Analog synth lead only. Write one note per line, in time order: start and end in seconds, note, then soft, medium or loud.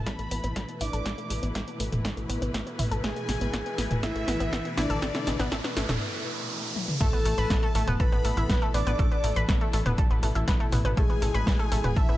0.06 0.71 B4 loud
0.81 1.45 D5 loud
3.04 3.93 G#4 loud
4.03 4.68 E4 loud
4.77 5.42 D4 loud
7.01 7.90 A4 loud
8.00 8.64 B4 loud
8.74 9.39 D5 loud
10.97 11.98 G#4 loud
11.97 12.17 E4 loud